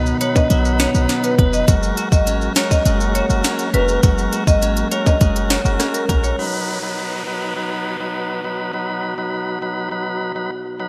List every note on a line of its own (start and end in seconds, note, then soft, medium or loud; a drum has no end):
0.00 0.13 C#2 loud
0.00 1.68 B2 medium
0.00 1.64 D#3 medium
0.00 0.17 F#3 medium
0.00 0.50 F#3 medium
0.00 1.64 F#3 medium
0.00 1.08 B3 medium
0.00 1.64 B3 medium
0.00 0.17 D#4 medium
0.00 0.79 D#4 medium
0.00 0.18 B4 medium
0.00 0.20 B4 medium
0.06 maracas medium
0.21 0.48 F#3 medium
0.21 0.48 D#4 medium
0.21 1.37 B4 medium
0.21 0.48 B4 medium
0.21 0.34 C#5 medium
0.21 closed hi-hat medium
0.21 maracas medium
0.36 0.49 D#5 medium
0.36 kick medium
0.36 high timbale medium
0.36 maracas medium
0.50 0.87 B1 loud
0.50 0.91 F#3 medium
0.50 1.68 F#3 medium
0.50 0.91 D#4 medium
0.50 0.91 B4 loud
0.50 closed hi-hat medium
0.50 maracas medium
0.65 maracas medium
0.80 1.74 D#4 medium
0.80 0.93 C#5 medium
0.80 snare loud
0.80 closed hi-hat medium
0.80 maracas medium
0.94 1.07 B1 medium
0.94 1.35 F#3 medium
0.94 1.35 D#4 medium
0.94 1.35 B4 medium
0.94 maracas medium
1.09 1.74 B3 medium
1.09 snare medium
1.09 closed hi-hat medium
1.09 maracas medium
1.24 1.37 B4 medium
1.24 closed hi-hat medium
1.24 maracas soft
1.38 1.63 F1 medium
1.38 1.66 F#3 medium
1.38 1.66 D#4 medium
1.38 1.74 B4 medium
1.38 1.66 B4 medium
1.38 kick medium
1.38 closed hi-hat medium
1.53 1.66 D#5 medium
1.53 maracas medium
1.68 1.92 F#1 loud
1.68 6.21 F#3 medium
1.68 4.03 F#3 medium
1.68 2.08 G#3 loud
1.68 6.21 G#3 medium
1.68 6.21 A#3 medium
1.68 2.09 F#4 medium
1.68 2.09 A#4 loud
1.68 kick loud
1.68 closed hi-hat medium
1.68 maracas medium
1.83 maracas medium
1.97 3.15 F#4 medium
1.97 closed hi-hat medium
1.97 maracas medium
2.12 2.49 G#1 medium
2.12 2.53 G#3 medium
2.12 2.53 F#4 medium
2.12 2.53 A#4 medium
2.12 2.25 D#5 medium
2.12 kick medium
2.12 maracas medium
2.27 3.43 C#4 medium
2.27 closed hi-hat medium
2.27 maracas medium
2.42 maracas soft
2.56 2.83 G#3 medium
2.56 2.83 F#4 medium
2.56 3.73 A#4 medium
2.56 2.83 A#4 medium
2.56 2.69 C#5 medium
2.56 snare loud
2.56 closed hi-hat medium
2.56 maracas medium
2.71 2.84 D#5 medium
2.71 kick medium
2.71 maracas medium
2.85 3.22 F#1 loud
2.85 3.26 G#3 loud
2.85 5.20 G#3 medium
2.85 3.26 F#4 medium
2.85 3.26 A#4 loud
2.85 closed hi-hat medium
2.85 maracas medium
3.00 maracas medium
3.15 4.32 F#4 medium
3.15 3.28 C#5 medium
3.15 closed hi-hat medium
3.15 maracas medium
3.29 3.42 F#1 medium
3.29 3.70 G#3 medium
3.29 3.70 F#4 medium
3.29 3.70 A#4 medium
3.29 maracas medium
3.44 4.61 C#4 medium
3.44 snare loud
3.44 closed hi-hat medium
3.44 maracas medium
3.59 closed hi-hat medium
3.59 maracas soft
3.74 3.98 F1 medium
3.74 4.01 G#3 medium
3.74 4.01 F#4 medium
3.74 4.90 A#4 medium
3.74 4.01 A#4 medium
3.74 3.87 B4 medium
3.74 closed hi-hat medium
3.88 maracas medium
4.03 4.28 F#1 loud
4.03 6.94 F#3 medium
4.03 4.44 G#3 medium
4.03 4.44 F#4 medium
4.03 4.44 A#4 loud
4.03 kick loud
4.03 closed hi-hat medium
4.03 maracas medium
4.18 maracas medium
4.33 5.50 F#4 medium
4.33 closed hi-hat medium
4.33 maracas soft
4.47 4.84 G#1 loud
4.47 4.88 G#3 medium
4.47 4.88 F#4 medium
4.47 4.88 A#4 medium
4.47 4.60 D#5 medium
4.47 kick loud
4.47 maracas medium
4.62 5.79 C#4 medium
4.62 closed hi-hat medium
4.62 maracas medium
4.77 closed hi-hat medium
4.77 maracas medium
4.91 5.18 G#3 medium
4.91 5.19 F#4 medium
4.91 6.08 A#4 medium
4.91 5.19 A#4 medium
4.91 5.05 C#5 medium
4.91 closed hi-hat medium
4.91 maracas medium
5.06 5.19 D#5 medium
5.06 kick medium
5.06 high timbale medium
5.06 maracas medium
5.21 5.58 F#1 loud
5.21 5.61 G#3 medium
5.21 6.44 G#3 medium
5.21 5.62 F#4 medium
5.21 5.62 A#4 loud
5.21 kick medium
5.21 closed hi-hat medium
5.21 maracas medium
5.36 closed hi-hat medium
5.36 maracas medium
5.50 6.94 F#4 medium
5.50 5.63 C#5 medium
5.50 snare loud
5.50 closed hi-hat medium
5.50 maracas medium
5.65 5.77 F#1 medium
5.65 6.05 G#3 medium
5.65 6.06 F#4 medium
5.65 6.06 A#4 medium
5.65 maracas medium
5.80 6.44 C#4 medium
5.80 cross-stick medium
5.80 snare medium
5.80 closed hi-hat medium
5.80 maracas medium
5.94 6.07 A#4 medium
5.94 closed hi-hat medium
5.94 maracas soft
6.09 6.34 A#1 loud
6.09 6.36 G#3 medium
6.09 6.36 F#4 medium
6.09 6.44 A#4 medium
6.09 6.36 A#4 medium
6.09 kick medium
6.09 closed hi-hat medium
6.09 maracas medium
6.24 6.37 C#5 medium
6.24 maracas medium
6.38 10.88 B2 medium
6.38 6.79 F#3 medium
6.38 10.88 F#3 medium
6.38 10.88 D#4 medium
6.38 6.79 D#4 medium
6.38 8.74 F#4 medium
6.38 8.72 B4 medium
6.38 6.79 B4 loud
6.38 downlifter medium
6.82 7.23 F#3 medium
6.82 7.23 D#4 medium
6.82 7.23 B4 medium
7.27 7.54 F#3 medium
7.27 7.54 D#4 medium
7.27 7.54 B4 medium
7.56 7.97 F#3 medium
7.56 7.97 D#4 medium
7.56 7.97 B4 medium
8.00 8.41 F#3 medium
8.00 8.41 D#4 medium
8.00 8.41 B4 medium
8.44 8.71 F#3 medium
8.44 8.72 D#4 medium
8.44 8.72 B4 medium
8.73 9.14 F#3 medium
8.73 9.14 D#4 medium
8.73 10.88 F#4 medium
8.73 9.15 B4 loud
9.18 9.58 F#3 medium
9.18 9.59 D#4 medium
9.18 9.59 B4 medium
9.62 9.89 F#3 medium
9.62 9.89 D#4 medium
9.62 9.89 B4 medium
9.91 10.32 F#3 medium
9.91 10.32 D#4 medium
9.91 10.32 B4 medium
10.35 10.50 F#3 medium
10.35 10.51 D#4 medium
10.35 10.51 B4 medium
10.80 10.88 F#3 medium
10.80 10.88 D#4 medium
10.80 10.88 B4 medium